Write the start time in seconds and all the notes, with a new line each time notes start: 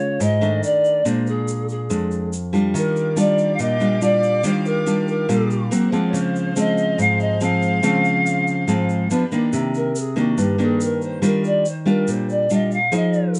Already playing: C#3 G#3 F4 C#5
0.20 G#2 D#5, shaker
0.41 D#3 A3 D4, shaker
0.63 D5, shaker
0.85 shaker
1.05 A#2 G#3 D4 C5, shaker
1.27 G#4, shaker
1.48 shaker
1.69 G#4, shaker
1.90 F2 G#3 D4, shaker
2.11 shaker
2.33 shaker
2.53 G3 D4 F4, shaker
2.74 D#3 G4 A#4 F5 D6, shaker
2.96 shaker
3.16 G3 D4 F4 D5, shaker
3.38 shaker
3.54 F5
3.59 A#2 D#5, shaker
3.80 G3 D4 F4, shaker
4.01 G3 D4 F4 D5, shaker
4.23 shaker
4.43 D#3 G3 D4 F4 C5, shaker
4.65 A#4, shaker
4.86 G3 D4 F4, shaker
5.08 A#4, shaker
5.29 A#2 G3 D4 F4, shaker
5.50 shaker
5.71 F#3 A#3 C4 G#4 C5 F#5, shaker
5.92 F3 G#3 C4, shaker
6.07 C#5
6.13 C#3 G#4 F5, shaker
6.17 C5
6.36 shaker
6.56 F3 G#3 C4 D#5, shaker
6.78 shaker
6.98 G#2 F5, shaker
7.20 D#5, shaker
7.41 F3 G#3 C4 F5, shaker
7.62 shaker
7.83 C#3 F3 G#3 C4, shaker
8.05 shaker
8.26 shaker
8.47 shaker
8.67 G#2 F3 G#3 C4, shaker
8.89 shaker
9.09 F3 B3 D4 G4 B4, shaker
9.32 D#3 A#3 D4, shaker
9.53 C3, shaker
9.74 A#4, shaker
9.96 G#4, shaker
10.16 D#3 A#3 D4 F#4, shaker
10.38 G2 G4, shaker
10.58 D#3 A#3 D4 G#4, shaker
10.81 A#4, shaker
11.02 C5, shaker
11.22 D#3 G3 D4 F4 A#4, shaker
11.44 D5, shaker
11.65 C5, shaker
11.86 G3 D4 F4 A#4, shaker
12.08 A#2 C5, shaker
12.29 D5, shaker
12.50 G3 D4 F4 D#5, shaker
12.71 F5, shaker
12.92 F3 D#4 G#4 C5, shaker
12.96 D#5
13.13 shaker
13.35 shaker